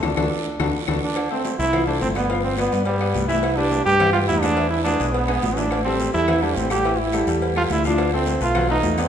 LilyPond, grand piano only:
\new Staff \with { instrumentName = "Grand piano" } { \time 4/4 \key d \minor \tempo 4 = 211 <d' fis' a'>8 <d' fis' a'>8 r4 <d' fis' a'>8 r8 <d' fis' a'>8 r8 | r8 <a a' c''>4 <a a' c''>8 <f f' f''>8 <a a' c''>4 <b b' d''>8 | <f f' f''>4 <b b' d''>8 <b b' d''>4 <b b' d''>4 <e e' e''>8~ | <e e' e''>8 <g g' b'>4 <g g' b'>8 <e e' e''>8 <g g' b'>4 <gis gis' b'>8 |
<e e' e''>4 <gis gis' b'>8 <gis gis' b'>4 <gis gis' b'>4 <e e' e''>8~ | <e e' e''>8 <g g' a'>4 <g g' a'>8 <e e' e''>8 <g g' a'>4 <g g' a'>8 | <e e' e''>4 <g g' a'>8 <g g' a'>4 <g g' a'>4 <f f' f''>8~ | <f f' f''>8 <a a' c''>4 <a a' b'>8 <fis fis' fis''>8 <a a' b'>4 <b b' d''>8 | }